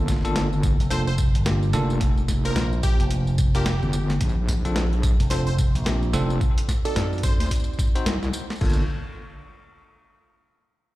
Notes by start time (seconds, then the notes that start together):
Already playing: G1 A#3 D4 F4 A4
0.08 kick, snare, tambourine
0.12 snare
0.16 snare
0.21 G1 A#3 D4 F4 A4, snare, closed hi-hat, tambourine
0.36 snare, closed hi-hat, tambourine
0.53 tambourine
0.63 kick, tambourine
0.80 F1, closed hi-hat, tambourine
0.90 A#3 D4 F4 A4 C5, snare, closed hi-hat, tambourine
1.07 C5, tambourine
1.18 kick, tambourine
1.35 G1, closed hi-hat, tambourine
1.46 A#3 D4 F4 G4, snare, closed hi-hat, tambourine
1.63 tambourine
1.73 F1 A#3 D4 F4 A4, snare, tambourine
1.90 tambourine
2.01 kick, closed hi-hat, tambourine
2.18 tambourine
2.28 kick, snare, tambourine
2.45 A#3 D4 F4 A#4 C5, closed hi-hat, tambourine
2.56 A#1, snare, closed hi-hat, tambourine
2.73 tambourine
2.83 G4, kick, tambourine
3.00 F1, closed hi-hat, tambourine
3.11 closed hi-hat, tambourine
3.27 tambourine
3.38 kick, tambourine
3.55 A#3 D4 F4 G4 A#4, closed hi-hat, tambourine
3.66 snare, closed hi-hat, tambourine
3.83 G1, tambourine
3.93 tambourine
4.10 snare, tambourine
4.21 A#1, kick, closed hi-hat, tambourine
4.29 tambourine
4.48 kick, snare, tambourine
4.65 A#1 C4 D4 F4 A4, closed hi-hat, tambourine
4.76 snare, closed hi-hat, tambourine
4.93 tambourine
5.03 kick, tambourine
5.20 F1, closed hi-hat, tambourine
5.30 C4 D4 F4 A4 C5, snare, closed hi-hat, tambourine
5.47 C5, tambourine
5.58 kick, tambourine
5.75 A#1, closed hi-hat, tambourine
5.86 C4 D4 F4 G4, snare, closed hi-hat, tambourine
6.03 tambourine
6.13 F1 C4 D4 F4 A4, snare, tambourine
6.30 tambourine
6.41 kick, tambourine
6.58 closed hi-hat, tambourine
6.69 kick, snare, tambourine
6.85 C4 D#4 F#4 A4 D5, closed hi-hat, tambourine
6.96 F#2, snare, closed hi-hat, tambourine
7.13 tambourine
7.18 closed hi-hat
7.23 C5, kick, tambourine
7.40 D2 C5, closed hi-hat, tambourine
7.43 tambourine
7.46 tambourine
7.48 closed hi-hat, tambourine
7.51 kick, tambourine
7.55 tambourine
7.60 tambourine
7.64 tambourine
7.68 tambourine
7.73 tambourine
7.79 kick, tambourine
7.87 tambourine
7.95 C4 D#4 F#4 C5, closed hi-hat, tambourine
8.06 C2, snare, closed hi-hat, tambourine
8.23 snare, tambourine
8.33 tambourine
8.50 snare, tambourine
8.53 tambourine
8.56 tambourine
8.58 A#3, crash, tambourine
8.61 G1 D4 F4 A4, kick, tambourine
8.65 tambourine
8.69 tambourine
8.73 tambourine